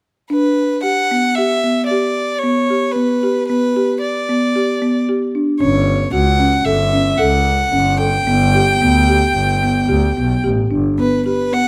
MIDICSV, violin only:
0, 0, Header, 1, 2, 480
1, 0, Start_track
1, 0, Tempo, 530035
1, 283, Time_signature, 5, 2, 24, 8
1, 7001, Tempo, 542495
1, 10494, End_track
2, 0, Start_track
2, 0, Title_t, "Violin"
2, 0, Program_c, 0, 40
2, 280, Note_on_c, 0, 71, 64
2, 731, Note_off_c, 0, 71, 0
2, 753, Note_on_c, 0, 78, 68
2, 1223, Note_on_c, 0, 76, 75
2, 1237, Note_off_c, 0, 78, 0
2, 1678, Note_off_c, 0, 76, 0
2, 1684, Note_on_c, 0, 74, 62
2, 2160, Note_on_c, 0, 73, 64
2, 2174, Note_off_c, 0, 74, 0
2, 2641, Note_on_c, 0, 71, 60
2, 2655, Note_off_c, 0, 73, 0
2, 3143, Note_off_c, 0, 71, 0
2, 3147, Note_on_c, 0, 71, 65
2, 3602, Note_off_c, 0, 71, 0
2, 3635, Note_on_c, 0, 74, 64
2, 4561, Note_off_c, 0, 74, 0
2, 5070, Note_on_c, 0, 73, 61
2, 5519, Note_off_c, 0, 73, 0
2, 5558, Note_on_c, 0, 78, 69
2, 6020, Note_on_c, 0, 76, 72
2, 6033, Note_off_c, 0, 78, 0
2, 6502, Note_on_c, 0, 78, 68
2, 6516, Note_off_c, 0, 76, 0
2, 7221, Note_on_c, 0, 79, 75
2, 7234, Note_off_c, 0, 78, 0
2, 9391, Note_off_c, 0, 79, 0
2, 9893, Note_on_c, 0, 71, 61
2, 10112, Note_off_c, 0, 71, 0
2, 10124, Note_on_c, 0, 71, 64
2, 10360, Note_on_c, 0, 78, 73
2, 10373, Note_off_c, 0, 71, 0
2, 10494, Note_off_c, 0, 78, 0
2, 10494, End_track
0, 0, End_of_file